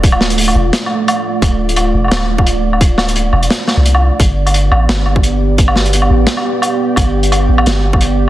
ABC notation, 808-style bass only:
X:1
M:4/4
L:1/16
Q:"Swing 16ths" 1/4=173
K:Ddor
V:1 name="808-style bass" clef=bass
D,,,6 E,,,2 z8 | D,,,6 E,,,2 D,,,8- | D,,,6 E,,,2 z3 C,,4 z | G,,,6 A,,,2 z8 |
z6 A,,,2 z8 | G,,,6 A,,,2 G,,,8 |]